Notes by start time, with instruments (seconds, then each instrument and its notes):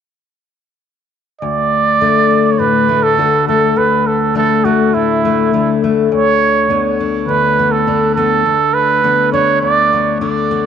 1.41 steel-string acoustic guitar D2, trumpet D5
2.01 steel-string acoustic guitar D3 A3
2.30 steel-string acoustic guitar F#4
2.52 trumpet C#5
2.59 steel-string acoustic guitar A2, trumpet B4
2.89 steel-string acoustic guitar A3
3.03 trumpet A4
3.18 steel-string acoustic guitar D3 F#4
3.48 steel-string acoustic guitar A3, trumpet A4
3.76 steel-string acoustic guitar D2, trumpet B4
4.07 trumpet A4
4.35 steel-string acoustic guitar D3 A3, trumpet A4
4.65 steel-string acoustic guitar A3, trumpet F#4
4.94 steel-string acoustic guitar A2, trumpet E4
5.25 steel-string acoustic guitar A3
5.53 steel-string acoustic guitar D3 A3
5.84 steel-string acoustic guitar A3
6.11 steel-string acoustic guitar D2, trumpet C#5
6.70 steel-string acoustic guitar D3 B3
7.00 steel-string acoustic guitar D4
7.28 steel-string acoustic guitar D2, trumpet B4
7.59 steel-string acoustic guitar B3
7.72 trumpet A4
7.87 steel-string acoustic guitar D3 D4
8.15 steel-string acoustic guitar B3, trumpet A4
8.46 steel-string acoustic guitar D2
8.74 trumpet B4
9.04 steel-string acoustic guitar D3 B3
9.33 steel-string acoustic guitar D4, trumpet C#5
9.61 steel-string acoustic guitar D2, trumpet D5
9.93 steel-string acoustic guitar B3
10.21 steel-string acoustic guitar D3 D4
10.51 steel-string acoustic guitar B3